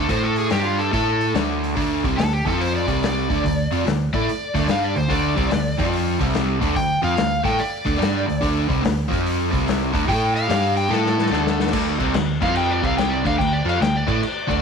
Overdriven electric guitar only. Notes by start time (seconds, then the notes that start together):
0.09 A3 E4 A4
0.50 G3 D4 G4
0.92 A3 E4 A4
1.35 D3 A3 D4
1.76 D3 A3 D4
2.05 C3 G3 C4
2.18 D3 A3
2.45 F3 C4 F4
2.87 C3 G3 C4
3.30 D3 A3 D4
3.44 D3 A3
3.71 F3 C4 F4
3.85 D3 A3
4.13 A3 E4 A4
4.28 muted overdriven electric guitar stroke
4.54 D3 A3 D4
4.68 G3 D4 G4
4.95 D3 A3
5.09 D3 A3 D4
5.36 C3 G3 C4
5.51 D3 A3
5.78 F3 C4 F4
6.19 C3 G3 C4
6.60 D3 A3 D4
6.76 D3 A3
7.02 F3 C4 F4
7.17 D3 A3
7.44 A3 E4 A4
7.59 muted overdriven electric guitar stroke
7.85 D3 A3 D4
7.98 G3 D4 G4
8.26 D3 A3
8.41 D3 A3 D4
8.68 C3 G3 C4
8.82 D3 A3
9.08 F3 C4 F4
9.51 C3 G3 C4
9.93 D3 A3 D4
10.07 A3 E4 A4
10.48 G3 D4 G4
10.89 A3 E4 A4
11.31 D3 A3 D4
11.72 D3 A3 D4
11.99 C3 G3 C4
12.15 D3 A3
12.41 F3 C4 F4
12.82 C3 G3 C4
13.24 D3 A3 D4
13.39 D3 A3
13.65 F3 C4 F4
13.79 D3 A3
14.07 A3 E4 A4
14.22 muted overdriven electric guitar stroke
14.47 D3 A3 D4